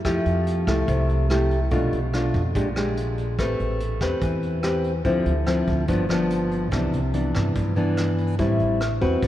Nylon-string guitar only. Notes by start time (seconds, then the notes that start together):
0.05 F3 A3 E4 G4
0.68 A3 E4 G4
0.88 C3
1.31 A3 E4 G4
1.71 B2 A3 D4 F4
2.14 A3 D4 F4
2.55 A#2 G#3 D4 G4
2.76 G#3 D4 G4
3.39 A3 C4 G4 B4
4.01 C4 G4 B4
4.22 E3
4.63 C4 G4 B4
5.05 D3 F3 C4 E4
5.46 F3 C4 E4
5.88 G2 F3 B3 D4
6.09 F3 B3 D4
6.72 C3 E3 B3 D4
7.14 E3 B3 D4
7.56 G2
7.76 E3 B3 D4
8.39 A2 G3 C4 E4
9.01 C4 F#4 B4
9.23 D3